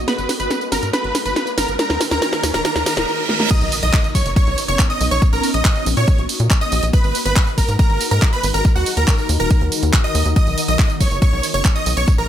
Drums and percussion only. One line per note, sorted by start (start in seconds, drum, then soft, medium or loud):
0.08 snare medium
0.08 closed hi-hat soft
0.08 tambourine soft
0.18 closed hi-hat soft
0.18 tambourine soft
0.29 snare medium
0.29 open hi-hat loud
0.29 tambourine medium
0.40 closed hi-hat medium
0.40 tambourine soft
0.51 snare medium
0.51 closed hi-hat soft
0.51 tambourine soft
0.61 closed hi-hat soft
0.61 tambourine soft
0.72 snare medium
0.72 open hi-hat loud
0.72 tambourine medium
0.83 closed hi-hat soft
0.83 tambourine soft
0.93 snare medium
0.93 closed hi-hat medium
0.93 tambourine soft
1.04 closed hi-hat soft
1.15 snare medium
1.15 open hi-hat loud
1.15 tambourine medium
1.26 closed hi-hat medium
1.26 tambourine soft
1.36 snare medium
1.36 closed hi-hat soft
1.36 tambourine soft
1.47 closed hi-hat soft
1.47 tambourine soft
1.58 snare medium
1.58 open hi-hat loud
1.58 tambourine medium
1.68 closed hi-hat medium
1.68 tambourine soft
1.79 snare medium
1.79 closed hi-hat soft
1.79 tambourine soft
1.90 snare medium
1.90 closed hi-hat soft
1.90 tambourine soft
2.01 snare medium
2.01 open hi-hat loud
2.01 tambourine medium
2.11 snare medium
2.11 closed hi-hat soft
2.11 tambourine soft
2.22 snare medium
2.22 closed hi-hat soft
2.22 tambourine soft
2.33 snare medium
2.33 closed hi-hat soft
2.33 tambourine soft
2.43 snare loud
2.43 open hi-hat loud
2.43 tambourine medium
2.54 snare medium
2.54 closed hi-hat soft
2.54 tambourine soft
2.65 snare loud
2.65 closed hi-hat medium
2.65 tambourine soft
2.76 snare medium
2.76 closed hi-hat soft
2.76 tambourine soft
2.86 snare loud
2.86 open hi-hat loud
2.86 tambourine medium
2.97 snare medium
2.97 closed hi-hat medium
2.97 tambourine soft
3.29 snare medium
3.40 snare medium
3.51 kick loud
3.51 closed hi-hat medium
3.51 crash loud
3.51 tambourine soft
3.61 closed hi-hat soft
3.61 tambourine soft
3.72 open hi-hat loud
3.72 tambourine medium
3.83 closed hi-hat medium
3.83 tambourine soft
3.93 kick loud
3.93 clap loud
3.93 closed hi-hat medium
3.93 tambourine soft
4.04 closed hi-hat soft
4.04 tambourine soft
4.15 kick medium
4.15 open hi-hat loud
4.15 tambourine medium
4.26 closed hi-hat medium
4.26 tambourine soft
4.36 kick loud
4.36 closed hi-hat medium
4.36 tambourine soft
4.47 closed hi-hat soft
4.58 open hi-hat loud
4.58 tambourine medium
4.68 closed hi-hat medium
4.68 tambourine soft
4.79 kick loud
4.79 clap loud
4.79 closed hi-hat medium
4.79 tambourine soft
4.90 closed hi-hat soft
4.90 tambourine soft
5.01 open hi-hat loud
5.01 tambourine medium
5.11 closed hi-hat medium
5.11 tambourine soft
5.22 kick loud
5.22 closed hi-hat medium
5.22 tambourine soft
5.33 closed hi-hat soft
5.33 tambourine soft
5.43 open hi-hat loud
5.43 tambourine medium
5.54 closed hi-hat medium
5.54 tambourine soft
5.65 kick loud
5.65 clap loud
5.65 closed hi-hat medium
5.65 tambourine soft
5.76 closed hi-hat soft
5.76 tambourine soft
5.86 open hi-hat loud
5.86 tambourine medium
5.97 closed hi-hat medium
5.97 tambourine soft
6.08 kick loud
6.08 closed hi-hat medium
6.08 tambourine soft
6.18 closed hi-hat soft
6.29 open hi-hat loud
6.29 tambourine medium
6.40 closed hi-hat medium
6.40 tambourine soft
6.50 kick loud
6.50 clap loud
6.50 closed hi-hat medium
6.50 tambourine soft
6.61 closed hi-hat soft
6.61 tambourine soft
6.72 open hi-hat loud
6.72 tambourine medium
6.83 closed hi-hat medium
6.83 tambourine soft
6.93 kick loud
6.93 closed hi-hat medium
6.93 tambourine soft
7.04 closed hi-hat soft
7.04 tambourine soft
7.15 open hi-hat loud
7.15 tambourine medium
7.26 closed hi-hat medium
7.26 tambourine soft
7.36 kick loud
7.36 clap loud
7.36 closed hi-hat medium
7.36 tambourine soft
7.47 closed hi-hat soft
7.47 tambourine soft
7.58 kick medium
7.58 open hi-hat loud
7.58 tambourine medium
7.69 closed hi-hat medium
7.69 tambourine soft
7.79 kick loud
7.79 closed hi-hat medium
7.79 tambourine soft
7.90 closed hi-hat soft
8.01 open hi-hat loud
8.01 tambourine medium
8.11 closed hi-hat medium
8.11 tambourine soft
8.22 kick loud
8.22 clap loud
8.22 closed hi-hat medium
8.22 tambourine soft
8.33 closed hi-hat soft
8.33 tambourine soft
8.43 open hi-hat loud
8.43 tambourine medium
8.54 closed hi-hat medium
8.54 tambourine soft
8.65 kick loud
8.65 closed hi-hat medium
8.65 tambourine soft
8.76 closed hi-hat soft
8.76 tambourine soft
8.86 open hi-hat loud
8.86 tambourine medium
8.97 closed hi-hat medium
8.97 tambourine soft
9.08 kick loud
9.08 clap loud
9.08 closed hi-hat soft
9.08 tambourine soft
9.18 closed hi-hat soft
9.18 tambourine soft
9.29 open hi-hat loud
9.29 tambourine medium
9.40 closed hi-hat soft
9.40 tambourine soft
9.51 kick loud
9.51 closed hi-hat medium
9.51 tambourine soft
9.61 closed hi-hat soft
9.72 open hi-hat loud
9.72 tambourine medium
9.83 closed hi-hat medium
9.83 tambourine soft
9.93 kick loud
9.93 clap loud
9.93 closed hi-hat soft
9.93 tambourine soft
10.04 closed hi-hat soft
10.04 tambourine soft
10.15 open hi-hat loud
10.15 tambourine medium
10.26 closed hi-hat soft
10.26 tambourine soft
10.36 kick loud
10.36 closed hi-hat soft
10.36 tambourine soft
10.47 closed hi-hat soft
10.47 tambourine soft
10.58 open hi-hat loud
10.58 tambourine medium
10.68 closed hi-hat medium
10.68 tambourine soft
10.79 kick loud
10.79 clap loud
10.79 closed hi-hat soft
10.79 tambourine soft
10.90 closed hi-hat soft
10.90 tambourine soft
11.00 kick medium
11.00 open hi-hat loud
11.00 tambourine medium
11.11 closed hi-hat soft
11.11 tambourine soft
11.22 kick loud
11.22 closed hi-hat medium
11.22 tambourine soft
11.33 closed hi-hat soft
11.43 open hi-hat loud
11.43 tambourine medium
11.54 closed hi-hat medium
11.54 tambourine soft
11.65 kick loud
11.65 clap loud
11.65 closed hi-hat medium
11.65 tambourine soft
11.76 closed hi-hat soft
11.76 tambourine soft
11.86 open hi-hat loud
11.86 tambourine medium
11.97 closed hi-hat medium
11.97 tambourine soft
12.08 kick loud
12.08 closed hi-hat soft
12.08 tambourine soft
12.18 closed hi-hat soft
12.18 tambourine soft